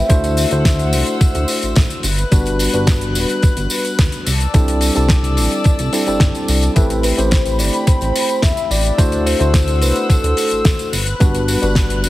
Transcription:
Already playing: soft synth lead E5
0.09 analog synth bass D2, tine electric piano A3 D4 E4 F#4 C5, string section C5 F#5 E6, kick, closed hi-hat, tambourine
0.24 closed hi-hat, tambourine
0.37 open hi-hat, tambourine
0.50 analog synth bass D2, tine electric piano A3 D4 E4 F#4 C5, closed hi-hat, tambourine
0.65 kick, snare, closed hi-hat, tambourine
0.79 closed hi-hat, tambourine
0.93 analog synth bass C2, open hi-hat, tambourine
1.07 closed hi-hat, tambourine
1.21 kick, closed hi-hat, tambourine
1.35 analog synth bass D2, closed hi-hat, tambourine
1.48 open hi-hat, tambourine
1.63 analog synth bass A1, closed hi-hat, tambourine
1.76 analog synth bass A1, kick, snare, closed hi-hat, tambourine
1.90 closed hi-hat, tambourine
2.03 analog synth bass G1, string section B4 F#6, open hi-hat, tambourine
2.18 closed hi-hat, tambourine
2.31 analog synth bass G1, tine electric piano G3 B3 D4 F#4 B4, kick, closed hi-hat, tambourine
2.46 closed hi-hat, tambourine
2.59 open hi-hat, tambourine
2.73 analog synth bass G1, tine electric piano G3 B3 D4 F#4 B4, closed hi-hat, tambourine
2.87 kick, snare, closed hi-hat, tambourine
3.01 closed hi-hat, tambourine
3.15 analog synth bass D1, open hi-hat, tambourine
3.29 closed hi-hat, tambourine
3.43 analog synth bass G1, kick, closed hi-hat, tambourine
3.57 analog synth bass G1, closed hi-hat, tambourine
3.70 open hi-hat, tambourine
3.85 closed hi-hat, tambourine
3.99 analog synth bass D2, kick, snare, closed hi-hat, tambourine
4.12 closed hi-hat, tambourine
4.26 analog synth bass C2, string section D5 A5 E6, open hi-hat, tambourine
4.40 closed hi-hat, tambourine
4.54 analog synth bass C2, tine electric piano G3 C4 D4 E4 A4, kick, closed hi-hat, tambourine
4.68 closed hi-hat, tambourine
4.81 open hi-hat, tambourine
4.95 analog synth bass C2, tine electric piano G3 C4 D4 E4 A4, closed hi-hat, tambourine
5.09 kick, snare, closed hi-hat, tambourine
5.24 closed hi-hat, tambourine
5.37 analog synth bass A1, open hi-hat, tambourine
5.51 closed hi-hat, tambourine
5.64 kick, closed hi-hat, tambourine
5.79 analog synth bass C2, closed hi-hat, tambourine
5.92 tine electric piano G3 C4 D4 E4 A4, open hi-hat, tambourine
6.06 analog synth bass G1, tine electric piano G3 C4 D4 E4 A4, closed hi-hat, tambourine
6.20 analog synth bass G1, kick, snare, closed hi-hat, tambourine
6.35 closed hi-hat, tambourine
6.48 analog synth bass C2, open hi-hat, tambourine
6.62 closed hi-hat, tambourine
6.76 analog synth bass A1, tine electric piano A3 C4 E4 G4 B4, soft synth lead A4, string section G5 B5, kick, closed hi-hat, tambourine
6.90 closed hi-hat, tambourine
7.03 soft synth lead B4, open hi-hat, tambourine
7.17 analog synth bass A1, tine electric piano A3 C4 E4 G4 C5, closed hi-hat, tambourine
7.31 soft synth lead C5, kick, snare, closed hi-hat, tambourine
7.46 closed hi-hat, tambourine
7.59 analog synth bass G1, soft synth lead D5, open hi-hat, tambourine
7.73 closed hi-hat, tambourine
7.87 analog synth bass A1, soft synth lead C5, kick, closed hi-hat, tambourine
8.01 analog synth bass A1, closed hi-hat, tambourine
8.15 open hi-hat, tambourine
8.29 closed hi-hat, tambourine
8.42 analog synth bass E2, soft synth lead E5, kick, snare, closed hi-hat, tambourine
8.57 closed hi-hat, tambourine
8.70 analog synth bass A1, soft synth lead D5, open hi-hat, tambourine
8.85 closed hi-hat, tambourine
8.98 analog synth bass D2, tine electric piano A3 D4 E4 F#4 C5, string section C5 F#5 E6, kick, closed hi-hat, tambourine
9.12 closed hi-hat, tambourine
9.27 soft synth lead C5, open hi-hat, tambourine
9.39 analog synth bass D2, tine electric piano A3 D4 E4 F#4 C5, closed hi-hat, tambourine
9.54 kick, snare, closed hi-hat, tambourine
9.68 closed hi-hat, tambourine
9.82 analog synth bass C2, soft synth lead B4, open hi-hat, tambourine
9.96 closed hi-hat, tambourine
10.09 soft synth lead A4, kick, closed hi-hat, tambourine
10.24 analog synth bass D2, closed hi-hat, tambourine
10.37 open hi-hat, tambourine
10.51 analog synth bass A1, closed hi-hat, tambourine
10.65 analog synth bass A1, kick, snare, closed hi-hat, tambourine
10.79 closed hi-hat, tambourine
10.93 analog synth bass G1, string section B4 F#6, open hi-hat, tambourine
11.07 closed hi-hat, tambourine
11.20 analog synth bass G1, tine electric piano G3 B3 D4 F#4 B4, kick, closed hi-hat, tambourine
11.35 closed hi-hat, tambourine
11.48 open hi-hat, tambourine
11.61 analog synth bass G1, tine electric piano G3 B3 D4 F#4 B4, closed hi-hat, tambourine
11.75 kick, snare, closed hi-hat, tambourine
11.90 closed hi-hat, tambourine
12.04 analog synth bass D1, open hi-hat, tambourine

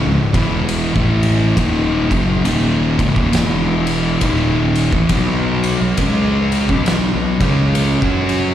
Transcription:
0.07 fingered electric bass C#1, distorted electric guitar C#2 G#2
0.34 fingered electric bass E1, distorted electric guitar E2 B2 E3, kick, ride
0.69 ride
0.94 fingered electric bass A1, distorted electric guitar A2 E3 A3, kick
1.23 ride
1.56 fingered electric bass D#1, distorted electric guitar D#2 A#2 D#3, kick, ride
2.11 fingered electric bass F#1, distorted electric guitar F#2 C#3 F#3, kick, ride
2.45 fingered electric bass D#1, distorted electric guitar D#2 A#2 D#3, ride
2.99 fingered electric bass C#1, distorted electric guitar C#2 G#2, kick, ride
3.16 fingered electric bass D#1, distorted electric guitar D#2 A#2, kick
3.33 fingered electric bass E1, distorted electric guitar E2 B2 E3, snare, ride
3.87 ride
4.21 fingered electric bass D#1, distorted electric guitar D#2 A#2 D#3, kick, ride
4.75 ride
4.92 fingered electric bass A1, distorted electric guitar A2 E3, kick
5.09 fingered electric bass B1, distorted electric guitar B2 F#3 B3, kick, ride
5.64 ride
5.81 fingered electric bass B1, distorted electric guitar B2 F#3
5.97 fingered electric bass C#2, distorted electric guitar C#3 G#3 C#4, kick, ride
6.52 ride
6.69 fingered electric bass B1, distorted electric guitar B2 F#3 B3, kick
6.86 snare, ride
7.14 fingered electric bass B1, distorted electric guitar B2 F#3
7.40 fingered electric bass C#2, distorted electric guitar C#3 G#3 C#4, kick, ride
7.75 ride
8.02 fingered electric bass F#2, distorted electric guitar F#3 C#4 F#4, kick
8.29 ride

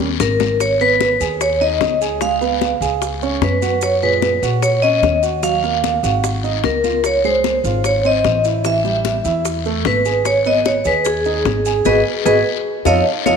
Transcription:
Already playing: upright bass D#2
0.00 high bongo
0.20 upright bass G#1, vibraphone A#4, high bongo, low bongo, high conga, short guiro, maracas
0.40 high bongo, low conga, short guiro, maracas
0.60 vibraphone C#5, high bongo, high conga, long guiro, maracas
0.80 grand piano B3 B4, vibraphone B4, high conga, maracas
1.00 high bongo, high conga, short guiro, maracas
1.20 upright bass D#2, grand piano G#4 G#5, high conga, short guiro, maracas
1.41 vibraphone C#5, high bongo, high conga, long guiro, maracas
1.61 grand piano D#4 D#5, vibraphone D#5, high conga, maracas
1.80 upright bass C#2, high bongo, low bongo, high conga, short guiro, maracas
2.01 grand piano G#4 G#5, short guiro, maracas
2.21 grand piano G#3 G#4, vibraphone F5, high bongo, high conga, long guiro, maracas
2.41 grand piano B3 B4, high bongo, high conga, maracas
2.61 high bongo, high conga, short guiro, maracas
2.81 upright bass C#2, grand piano G#4 G#5, high bongo, high conga, short guiro, maracas
3.02 high bongo, high conga, long guiro, maracas
3.22 grand piano C#4 C#5, high conga, maracas
3.41 upright bass F#2, vibraphone B4, high bongo, low bongo, high conga, short guiro, maracas
3.62 grand piano F#4 F#5, high bongo, high conga, short guiro, maracas
3.81 vibraphone C#5, high bongo, high conga, long guiro, maracas
4.02 grand piano A#2 G#4, vibraphone B4, high conga, maracas
4.22 high bongo, high conga, short guiro, maracas
4.42 upright bass A#2, grand piano F#4 F#5, high conga, short guiro, maracas
4.62 vibraphone C#5, high bongo, high conga, long guiro, maracas
4.82 grand piano C#4 C#5, vibraphone D#5, high conga, maracas
5.02 upright bass D#2, high bongo, low bongo, high conga, short guiro, maracas
5.23 grand piano F#4 F#5, short guiro, maracas
5.43 grand piano F#3 F#4, vibraphone F5, high bongo, high conga, long guiro, maracas
5.63 grand piano A#3 A#4, high bongo, high conga, maracas
5.84 high bongo, high conga, short guiro, maracas
6.03 upright bass G#1, grand piano F#4 F#5, high bongo, high conga, short guiro, maracas
6.24 high bongo, high conga, long guiro, maracas
6.44 grand piano D#4 D#5, high conga, maracas
6.64 upright bass C#2, vibraphone A#4, high bongo, low bongo, high conga, short guiro, maracas
6.84 grand piano F4 F5, high bongo, high conga, short guiro, maracas
7.04 vibraphone C#5, high bongo, long guiro, maracas
7.24 grand piano G#3 G#4, vibraphone C5, high conga, maracas
7.44 high bongo, high conga, short guiro, maracas
7.64 upright bass G#1, grand piano F4 F5, high conga, short guiro, maracas
7.84 vibraphone C#5, high bongo, high conga, long guiro, maracas
8.04 grand piano C4 C5, vibraphone D#5, high conga, maracas
8.24 upright bass A1, high bongo, low bongo, high conga, short guiro, maracas
8.44 grand piano E4 E5, short guiro, maracas
8.64 grand piano E3 E4, vibraphone E5, high bongo, high conga, long guiro, maracas
8.84 grand piano G3 G4, high bongo, high conga, maracas
9.05 high bongo, high conga, short guiro, maracas
9.25 upright bass E2, grand piano E4 E5, high bongo, high conga, short guiro, maracas
9.45 high bongo, high conga, long guiro, maracas
9.65 grand piano A3 A4, high conga, maracas
9.85 upright bass G#1, vibraphone B4, high bongo, low bongo, high conga, short guiro, maracas
10.05 grand piano G#4 G#5, high bongo, short guiro, maracas
10.25 vibraphone C#5, high bongo, high conga, long guiro, maracas
10.45 grand piano B3 B4, vibraphone D#5, high conga, maracas
10.65 vibraphone C#5, high bongo, high conga, short guiro, maracas
10.85 upright bass D#2, grand piano G#4 G#5, vibraphone B4, high conga, short guiro, maracas
11.05 vibraphone G#4, high bongo, high conga, long guiro, maracas
11.25 grand piano D#4 D#5, high conga, maracas
11.45 upright bass G#1, high bongo, low bongo, high conga, short guiro, maracas
11.65 grand piano G#4 G#5, short guiro, maracas
11.85 upright bass G#1, grand piano F#4 G#4 B4, vibraphone G#4 B4 D#5, high bongo, high conga, long guiro, maracas
12.25 upright bass G#1, grand piano F#4 G#4 B4, vibraphone G#4 B4 D#5, high bongo, high conga, long guiro, maracas
12.85 upright bass F2, grand piano D#4 F4 A4, vibraphone C#5 D#5 F5, high bongo, high conga, long guiro, maracas
13.25 upright bass F2, grand piano D#4 F4 A4, vibraphone C#5 D#5 F5, high bongo, high conga, maracas

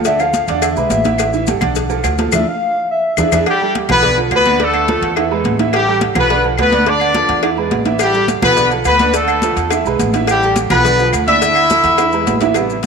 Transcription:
Already playing: upright bass D2
0.05 grand piano D3 D4 D5, soft synth lead E5, cowbell, high conga, low agogo, maracas
0.19 grand piano F3 F4 A4, soft synth lead F5, high conga, low agogo, claves, maracas
0.34 cowbell, high conga, maracas
0.48 upright bass E2, grand piano D3 D4 D5, cowbell, high conga, low agogo, maracas
0.62 soft synth lead E5, cowbell, high conga, low agogo, claves, maracas
0.76 upright bass B1, grand piano G#3 G#4 B4, high conga, maracas
0.90 upright bass A1, soft synth lead E5, cowbell, high conga, low timbale, low agogo, maracas
1.04 grand piano E3 E4 E5, cowbell, high conga, low agogo, maracas
1.18 cowbell, high conga, low agogo, claves, maracas
1.33 grand piano E3 E4 E5, high conga, maracas
1.47 grand piano G3 G4 A4, cowbell, high conga, low agogo, maracas
1.61 upright bass B1, grand piano D3 D4 D5, cowbell, high conga, low conga, low agogo, claves, maracas
1.75 cowbell, high conga, low conga, maracas
1.90 grand piano F3 F4 A4, high conga, low agogo, maracas
2.04 upright bass D2, cowbell, high conga, low timbale, low agogo, claves, maracas
2.18 grand piano F3 F4 A4, cowbell, high conga, maracas
2.32 upright bass D2, grand piano D4 E4 F4, soft synth lead E5, cowbell, low conga, high timbale, claves, maracas
2.48 soft synth lead F5
2.91 soft synth lead E5
3.17 upright bass E2, grand piano D4 E4 G#4, soft synth lead E5, cowbell, low conga, high timbale, claves, maracas
3.32 upright bass E2, grand piano D4 E4 G#4, cowbell, low conga, high timbale, claves, maracas
3.46 horn section G3 G4, cowbell, high conga, low agogo, claves
3.61 grand piano G3 G4 A4, high conga
3.75 cowbell, high conga, low agogo
3.89 upright bass B1, grand piano F3 F4 A4, horn section B3 B4, cowbell, high conga, low conga, low agogo, claves
4.03 grand piano D3 D4 D5, cowbell, high conga, low conga
4.18 grand piano F3 F4 A4, high conga, low agogo
4.31 upright bass D2, horn section B3, cowbell, high conga, low timbale, low agogo, claves
4.35 horn section B4
4.46 grand piano D3 D4 D5, cowbell, high conga
4.60 grand piano D3 D4 D5, horn section A3 A4, cowbell, high conga, low agogo
4.74 high conga, low agogo, claves
4.88 grand piano F3 F4 A4, cowbell, high conga
5.01 upright bass E2, cowbell, high conga, low agogo
5.16 grand piano E3 E4 E5, cowbell, high conga, low agogo, claves
5.31 grand piano G#3 G#4 B4, high conga
5.44 upright bass A1, cowbell, high conga, low agogo
5.59 grand piano E3 E4 E5, cowbell, high conga, low agogo
5.73 horn section G3 G4, cowbell, low agogo, claves
5.88 grand piano G3 G4 A4, high conga
6.01 cowbell, high conga, low agogo
6.15 upright bass B1, grand piano F3 F4 A4, horn section B3 B4, cowbell, high conga, low conga, low agogo, claves
6.30 grand piano D3 D4 D5, cowbell, high conga
6.44 grand piano F3 F4 A4, high conga, low agogo
6.58 upright bass D2, horn section B3 B4, cowbell, high conga, low timbale, low agogo, claves
6.72 grand piano D3 D4 D5, cowbell, high conga
6.86 grand piano D3 D4 D5, horn section D4 D5, cowbell, low agogo
7.00 high conga, low agogo, claves
7.15 grand piano F3 F4 A4, cowbell, high conga
7.29 upright bass E2, cowbell, high conga, low agogo
7.43 grand piano E3 E4 E5, cowbell, high conga, low agogo, claves
7.57 grand piano G#3 G#4 B4, high conga
7.71 upright bass A1, cowbell, high conga, low timbale, low agogo
7.85 grand piano E3 E4 E5, cowbell, high conga, low agogo
7.99 horn section G3 G4, cowbell, high conga, low agogo, claves, maracas
8.14 grand piano G3 G4 A4, high conga, maracas
8.28 cowbell, high conga, low agogo, maracas
8.42 upright bass B1, grand piano F3 F4 A4, horn section B3 B4, cowbell, high conga, low conga, low agogo, claves, maracas
8.56 grand piano D3 D4 D5, cowbell, high conga, low conga, maracas
8.71 grand piano F3 F4 A4, high conga, low agogo, maracas
8.85 upright bass D2, horn section B3 B4, cowbell, high conga, low agogo, claves, maracas
8.99 grand piano D3 D4 D5, cowbell, high conga, maracas
9.13 grand piano D3 D4 D5, horn section A3 A4, cowbell, low agogo, maracas
9.28 high conga, low agogo, claves, maracas
9.42 grand piano F3 F4 A4, cowbell, high conga, maracas
9.56 upright bass E2, cowbell, high conga, low agogo, maracas
9.70 grand piano E3 E4 E5, cowbell, high conga, low agogo, claves, maracas
9.85 upright bass B1, grand piano G#3 G#4 B4, high conga, maracas
9.99 upright bass A1, cowbell, high conga, low agogo, maracas
10.13 grand piano E3 E4 E5, cowbell, high conga, low agogo, maracas
10.27 horn section G3 G4, cowbell, high conga, low agogo, claves, maracas
10.43 grand piano G3 G4 A4, high conga, maracas
10.56 cowbell, high conga, low agogo, maracas
10.70 upright bass B1, grand piano F3 F4 A4, horn section B3 B4, cowbell, high conga, low conga, low agogo, claves, maracas
10.85 grand piano D3 D4 D5, cowbell, high conga, low conga, maracas
10.99 grand piano F3 F4 A4, low agogo, maracas
11.13 upright bass D2, cowbell, high conga, low agogo, claves, maracas
11.27 grand piano D3 D4 D5, horn section E4 E5, cowbell, high conga, maracas
11.42 grand piano D3 D4 D5, cowbell, high conga, low agogo, maracas
11.55 high conga, low agogo, claves, maracas
11.70 grand piano F3 F4 A4, cowbell, high conga, maracas
11.84 upright bass E2, cowbell, high conga, low agogo, maracas
11.98 grand piano E3 E4 E5, cowbell, high conga, high timbale, low agogo, claves, maracas
12.12 grand piano G#3 G#4 B4, high conga, maracas
12.27 upright bass A1, cowbell, high conga, low timbale, low agogo, maracas
12.41 grand piano E3 E4 E5, cowbell, high conga, low timbale, low agogo, maracas
12.54 grand piano C3 G3 B3, cowbell, low agogo, claves, maracas
12.70 high conga, maracas
12.83 cowbell

